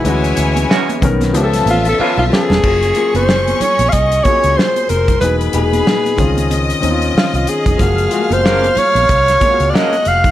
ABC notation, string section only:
X:1
M:4/4
L:1/8
Q:"Swing 16ths" 1/4=93
K:C#dor
V:1 name="String section"
[Ecg]3 z [^E=e=a]4 | [K:Gblyd] [Dd']6 [cc']2 | [=B=b]3 [ee']4- [ee'] | [ff']6 [Gg']2 |]